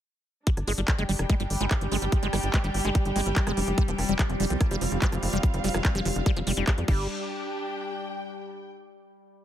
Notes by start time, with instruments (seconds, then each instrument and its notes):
0.47 acid bass G3, synth drone G3, string section D4, kick, closed hi-hat
0.57 analog synth bass G1, cross-stick, closed hi-hat
0.67 analog synth bass G1, acid bass G#3, open hi-hat
0.78 analog synth bass G1, acid bass G3, closed hi-hat
0.88 kick, clap, closed hi-hat
0.94 string section G5
0.99 analog synth bass G1, acid bass G#3, string section G4, closed hi-hat
1.09 analog synth bass G1, acid bass G3, open hi-hat
1.19 analog synth bass F1, cross-stick, closed hi-hat
1.30 acid bass G#3, kick, closed hi-hat
1.40 analog synth bass G1, acid bass G3, closed hi-hat
1.50 analog synth bass G1, open hi-hat
1.61 analog synth bass G1, acid bass G#3, closed hi-hat
1.71 acid bass G3, kick, cross-stick, clap, closed hi-hat
1.81 analog synth bass G1, closed hi-hat
1.92 analog synth bass G1, acid bass G#3, open hi-hat
2.02 analog synth bass G1, acid bass G3, closed hi-hat
2.12 kick, closed hi-hat
2.23 analog synth bass G1, acid bass G#3, closed hi-hat
2.33 analog synth bass G1, acid bass G3, cross-stick, open hi-hat
2.43 analog synth bass G1, closed hi-hat
2.54 acid bass G#3, kick, clap, closed hi-hat
2.64 analog synth bass G1, acid bass G3, closed hi-hat
2.74 analog synth bass G1, open hi-hat
2.85 analog synth bass G1, acid bass G#3, cross-stick, closed hi-hat
2.95 acid bass G3, kick, closed hi-hat
3.05 analog synth bass G1, closed hi-hat
3.16 analog synth bass G1, acid bass G#3, open hi-hat
3.26 analog synth bass G1, acid bass G3, closed hi-hat
3.36 kick, clap, closed hi-hat
3.47 analog synth bass F1, acid bass G#3, cross-stick, closed hi-hat
3.57 analog synth bass F1, acid bass G3, open hi-hat
3.67 analog synth bass F1, closed hi-hat
3.78 acid bass G3, string section C4, kick, closed hi-hat
3.88 analog synth bass F1, acid bass F3, closed hi-hat
3.99 analog synth bass F1, cross-stick, open hi-hat
4.03 string section F4
4.09 analog synth bass F1, acid bass G3, closed hi-hat
4.19 acid bass F3, kick, clap, closed hi-hat
4.30 analog synth bass F1, closed hi-hat
4.40 analog synth bass F1, acid bass G3, open hi-hat
4.50 analog synth bass C2, acid bass F3, closed hi-hat
4.61 kick, cross-stick, closed hi-hat
4.67 analog synth bass F1, acid bass G3, string section F5, closed hi-hat
4.81 analog synth bass F1, acid bass F3, open hi-hat
4.92 analog synth bass F1, closed hi-hat
5.02 acid bass G3, kick, clap, closed hi-hat
5.12 analog synth bass F1, acid bass F3, cross-stick, closed hi-hat
5.23 analog synth bass F1, open hi-hat
5.33 analog synth bass F1, acid bass G3, closed hi-hat
5.43 acid bass F3, kick, closed hi-hat
5.54 analog synth bass F1, closed hi-hat
5.64 analog synth bass F1, acid bass G3, open hi-hat
5.74 analog synth bass F1, acid bass F3, cross-stick, closed hi-hat
5.85 kick, clap, closed hi-hat
5.95 analog synth bass F1, acid bass G3, closed hi-hat
6.05 analog synth bass F1, acid bass F3, open hi-hat
6.16 analog synth bass F1, closed hi-hat
6.26 acid bass G3, kick, cross-stick, closed hi-hat
6.36 analog synth bass F1, acid bass F3, closed hi-hat
6.47 analog synth bass F1, acid bass G3, open hi-hat
6.57 analog synth bass F1, acid bass G3, closed hi-hat
6.67 acid bass G4, kick, clap, closed hi-hat
6.78 analog synth bass F2, closed hi-hat
6.88 analog synth bass G1, acid bass G3, string section D4, kick, crash
6.94 string section G4
7.21 string section G5